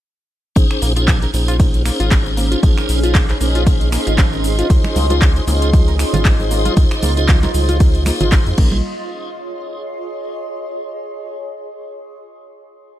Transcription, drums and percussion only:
0.56 kick, closed hi-hat, ride, shaker
0.71 finger snap, shaker
0.82 open hi-hat, shaker
0.96 closed hi-hat, shaker
1.08 kick, clap, closed hi-hat, ride, shaker
1.22 closed hi-hat, shaker
1.34 open hi-hat, shaker
1.48 closed hi-hat, shaker
1.60 kick, closed hi-hat, ride, shaker
1.74 closed hi-hat, shaker
1.86 finger snap, open hi-hat, shaker
2.00 closed hi-hat, shaker
2.11 kick, clap, closed hi-hat, ride, shaker
2.26 shaker
2.37 open hi-hat, shaker
2.52 closed hi-hat, shaker
2.63 kick, closed hi-hat, ride, shaker
2.78 finger snap, shaker
2.89 open hi-hat, shaker
3.03 closed hi-hat, shaker
3.15 kick, clap, closed hi-hat, ride, shaker
3.29 clap, closed hi-hat, shaker
3.41 open hi-hat, shaker
3.55 closed hi-hat, shaker
3.67 kick, closed hi-hat, ride, shaker
3.81 closed hi-hat, shaker
3.92 finger snap, open hi-hat, shaker
4.07 closed hi-hat, shaker
4.18 kick, clap, closed hi-hat, ride, shaker
4.33 shaker
4.44 open hi-hat, shaker
4.59 closed hi-hat, shaker
4.70 kick, closed hi-hat, ride, shaker
4.84 finger snap, muted conga, shaker
4.96 open hi-hat, high conga, shaker
5.10 closed hi-hat, muted conga, shaker
5.22 kick, clap, closed hi-hat, ride, shaker
5.36 closed hi-hat, shaker
5.48 open hi-hat, muted conga, high conga, shaker
5.62 closed hi-hat, shaker
5.73 kick, closed hi-hat, ride, muted conga, shaker
5.88 closed hi-hat, shaker
5.99 finger snap, open hi-hat, shaker
6.13 closed hi-hat, muted conga, low conga, shaker
6.25 kick, clap, closed hi-hat, ride, shaker
6.40 muted conga, shaker
6.51 open hi-hat, shaker
6.65 closed hi-hat, high conga, shaker
6.77 kick, closed hi-hat, ride, muted conga, shaker
6.91 finger snap, shaker
7.03 open hi-hat, muted conga, high conga, shaker
7.17 closed hi-hat, shaker
7.29 kick, clap, closed hi-hat, ride, shaker
7.43 clap, closed hi-hat, muted conga, shaker
7.54 open hi-hat, high conga, shaker
7.69 closed hi-hat, muted conga, shaker
7.80 kick, closed hi-hat, ride, shaker
7.95 closed hi-hat, shaker
8.06 finger snap, open hi-hat, muted conga, shaker
8.21 closed hi-hat, low conga, shaker
8.32 kick, clap, closed hi-hat, ride, muted conga, shaker
8.46 closed hi-hat, shaker
8.58 kick, crash
8.72 muted conga, high conga

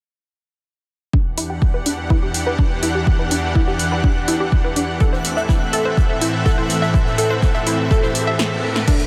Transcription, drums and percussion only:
1.13 kick
1.38 open hi-hat
1.62 kick
1.86 open hi-hat
2.10 kick
2.34 open hi-hat
2.59 kick
2.83 open hi-hat
3.07 kick
3.31 open hi-hat
3.55 kick
3.79 open hi-hat
4.04 kick
4.28 open hi-hat
4.52 kick
4.76 open hi-hat
5.00 kick, closed hi-hat
5.13 snare
5.25 snare, closed hi-hat, open hi-hat
5.37 closed hi-hat
5.49 kick, snare, closed hi-hat
5.73 closed hi-hat, open hi-hat
5.97 kick, closed hi-hat
6.21 closed hi-hat, open hi-hat
6.46 kick, snare, closed hi-hat
6.70 snare, closed hi-hat, open hi-hat
6.82 snare
6.94 kick, closed hi-hat
7.06 snare
7.18 closed hi-hat, open hi-hat
7.42 kick, snare, closed hi-hat
7.54 closed hi-hat
7.67 closed hi-hat, open hi-hat
7.91 kick, closed hi-hat
8.03 snare
8.15 closed hi-hat, open hi-hat
8.39 snare
8.76 snare
8.88 kick, closed hi-hat, crash, shaker
9.00 snare, closed hi-hat, shaker

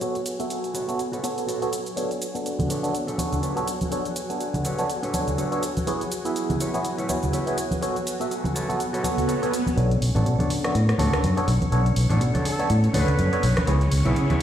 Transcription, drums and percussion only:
0.01 closed hi-hat, shaker
0.15 closed hi-hat, shaker
0.26 closed hi-hat, shaker
0.40 closed hi-hat, shaker
0.50 closed hi-hat, shaker
0.64 closed hi-hat, shaker
0.75 closed hi-hat, shaker
0.89 closed hi-hat, shaker
0.99 closed hi-hat, shaker
1.13 closed hi-hat, shaker
1.24 closed hi-hat, shaker
1.38 closed hi-hat, shaker
1.49 closed hi-hat, shaker
1.62 closed hi-hat, shaker
1.73 closed hi-hat, shaker
1.86 closed hi-hat, shaker
1.97 closed hi-hat, shaker
2.11 closed hi-hat, shaker
2.22 closed hi-hat, tambourine, shaker
2.35 closed hi-hat, shaker
2.46 closed hi-hat, shaker
2.59 closed hi-hat, tambourine, high conga, low conga, shaker
2.70 closed hi-hat, tambourine, shaker
2.83 closed hi-hat, tambourine, shaker
2.94 closed hi-hat, tambourine, shaker
3.08 closed hi-hat, shaker
3.18 closed hi-hat, tambourine, high conga, shaker
3.32 closed hi-hat, tambourine, low conga, shaker
3.43 closed hi-hat, shaker
3.57 closed hi-hat, shaker
3.67 closed hi-hat, tambourine, shaker
3.80 closed hi-hat, tambourine, high conga, shaker
3.92 closed hi-hat, tambourine, shaker
4.05 closed hi-hat, shaker
4.15 closed hi-hat, tambourine, shaker
4.30 closed hi-hat, shaker
4.40 closed hi-hat, tambourine, shaker
4.54 closed hi-hat, tambourine, high conga, low conga, shaker
4.65 closed hi-hat, tambourine, shaker
4.79 closed hi-hat, tambourine, shaker
4.89 closed hi-hat, shaker
5.03 closed hi-hat, shaker
5.14 closed hi-hat, tambourine, high conga, shaker
5.27 closed hi-hat, tambourine, low conga, shaker
5.38 closed hi-hat, shaker
5.52 closed hi-hat, shaker
5.63 closed hi-hat, tambourine, shaker
5.76 closed hi-hat, tambourine, high conga, shaker
5.87 closed hi-hat, tambourine, shaker
6.01 closed hi-hat, shaker
6.12 closed hi-hat, tambourine, shaker
6.25 closed hi-hat, tambourine, shaker
6.36 closed hi-hat, shaker
6.50 closed hi-hat, tambourine, high conga, low conga, shaker
6.60 closed hi-hat, tambourine, shaker
6.74 closed hi-hat, tambourine, shaker
6.85 closed hi-hat, tambourine, shaker
6.98 closed hi-hat, shaker
7.09 closed hi-hat, tambourine, high conga, shaker
7.22 closed hi-hat, tambourine, low conga, shaker
7.33 closed hi-hat, shaker
7.47 closed hi-hat, shaker
7.58 closed hi-hat, tambourine, shaker
7.71 closed hi-hat, tambourine, high conga, shaker
7.82 closed hi-hat, tambourine, shaker
7.96 closed hi-hat, tambourine, shaker
8.06 closed hi-hat, tambourine, shaker
8.20 closed hi-hat, tambourine, shaker
8.31 closed hi-hat, tambourine, shaker
8.44 closed hi-hat, tambourine, high conga, low conga, shaker
8.56 closed hi-hat, shaker
8.69 closed hi-hat, tambourine, shaker
8.80 closed hi-hat, tambourine, shaker
8.94 closed hi-hat, shaker
9.03 closed hi-hat, tambourine, high conga, shaker
9.18 closed hi-hat, tambourine, low conga, shaker
9.29 closed hi-hat, tambourine, shaker
9.42 closed hi-hat, tambourine, shaker
9.53 closed hi-hat, tambourine, shaker
9.66 closed hi-hat, tambourine, high conga, shaker
9.77 closed hi-hat, tambourine
9.91 closed hi-hat
10.02 open hi-hat
10.16 closed hi-hat
10.26 closed hi-hat
10.39 closed hi-hat, tambourine, high conga, low conga
10.50 open hi-hat, tambourine
10.64 cross-stick, closed hi-hat, tambourine
10.75 closed hi-hat
10.89 cross-stick, closed hi-hat
10.98 open hi-hat, tambourine, high conga
11.12 cross-stick, closed hi-hat, tambourine, low conga
11.24 closed hi-hat, tambourine
11.37 closed hi-hat
11.48 open hi-hat
11.61 closed hi-hat, tambourine, high conga
11.72 closed hi-hat
11.86 closed hi-hat
11.96 open hi-hat, tambourine
12.10 closed hi-hat
12.21 closed hi-hat
12.35 closed hi-hat, tambourine, high conga, low conga
12.45 open hi-hat, tambourine
12.60 closed hi-hat, tambourine
12.70 closed hi-hat, tambourine
12.84 closed hi-hat
12.94 open hi-hat, tambourine, high conga
13.08 closed hi-hat, tambourine, low conga
13.19 closed hi-hat, tambourine
13.33 closed hi-hat
13.43 open hi-hat
13.56 cross-stick, closed hi-hat, tambourine, high conga
13.67 closed hi-hat, tambourine
13.81 closed hi-hat
13.92 open hi-hat
14.06 closed hi-hat
14.16 closed hi-hat, tambourine
14.30 closed hi-hat, tambourine, high conga, low conga

